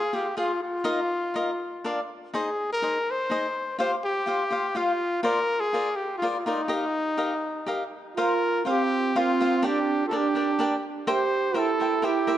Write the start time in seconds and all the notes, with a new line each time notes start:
Already playing: G#4
0.13 F4 G4 G#4 C5 F5
0.37 F4 G#4 C5 F5
0.63 F4
0.84 D#4 A#4 D#5 F5
1.34 D#4 A#4 D#5 F5
1.84 D4 A#4 D5 F5
2.34 D#4 G#4 C5 D#5
2.72 A#4
2.82 D#4 G#4 C5 D#5
3.11 C5
3.30 D#4 G#4 C5 D#5
3.79 F4 G4 C5 F5
4.04 G4
4.26 F4 G4 C5 F5
4.50 F4 G4 C5 F5
4.75 F4 G4 C5 F5
5.23 F4 A#4 C5 D5
5.60 G#4
5.73 F4 A#4 C5 D5
5.96 G4
6.18 F4
6.22 F4 A#4 C5 D5
6.36 F4
6.46 D#4 F4 A#4 C5 D5
6.68 G4 A#4 D#5 F5
7.17 G4 A#4 D#5 F5
7.66 G4 A#4 D#5 F5
8.17 F4 A#4 C5 F5
8.65 C4 F4 A#4 C5 F5
8.69 G4
9.15 C4 F4 A#4 C5 F5
9.40 F4 A#4 C5 F5
9.62 D4 G4 A#4 D5 G5
9.66 D4
10.07 D4 F4 A4
10.11 D4 A#4 D5 G5
10.17 G4
10.35 D4 A#4 D5 G5
10.59 D4 A#4 D5 G5
11.07 G4 A#4 C5 E5 G5
11.54 E4 A4 A#4 C5 E5 G5
11.80 A#4 C5 E5 G5
12.02 E4 G4 A#4 C5 E5 G5
12.27 A#4 C5 E5 G5